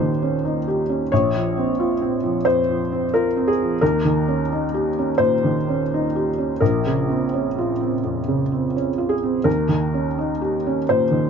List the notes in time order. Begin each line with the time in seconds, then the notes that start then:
Already playing: D#2 A#2 D#3 C#4 D#4 G4 A#4 C5
0.22 C#4
0.45 D#4
0.68 G4
0.89 C#4
1.12 A#1 C#5
1.36 F3
1.57 C4
1.80 F4
2.01 C4
2.23 F3
2.45 F2 C5
2.69 F3
2.92 C4
3.14 F4 A#4
3.37 C4
3.48 G#4
3.62 F3
3.81 D#2 A#4
4.05 D#3
4.28 C#4
4.52 D#4
4.74 G4
4.99 C#4
5.18 A#2 C5
5.44 D#3
5.69 C#4
5.94 D#4
6.16 G4
6.38 C#4
6.60 A#1 A#4
6.86 C#3
7.09 C4
7.33 C#4
7.58 F4
7.81 C4
8.04 F2
8.28 C#3
8.52 C4
8.76 C#4
8.98 F4
9.09 G#4
9.23 C4
9.44 D#2 A#4
9.69 D#3
9.94 C#4
10.18 D#4
10.42 G4
10.67 C#4
10.89 A#2 C5
11.11 D#3